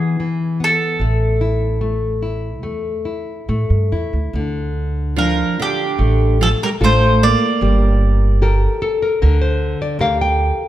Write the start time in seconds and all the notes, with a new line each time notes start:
Already playing: E3 B3 G#4
0.20 E3
0.60 B3 A4
0.99 A1 A3
1.41 E4
1.81 A3
2.22 E4
2.62 E2 A3
3.05 E4
3.49 A2 A3
3.70 G2
3.92 E2 E4
4.13 D2
4.33 D2 D3
5.16 F3 D4 F4 A#4
5.60 D3 G4
5.99 A1 A3
6.41 F3 A4
6.63 G3 A#4
6.80 A1 A3 D4 F4 A4 C5
7.23 A#3 D5
7.61 G1 G3
8.42 G4 A4 A#4
8.82 A4
9.02 A#4
9.22 D2 D3 A#4
9.41 C5
9.82 D5
9.99 D2 G4 A4 A#4 F5
10.21 G5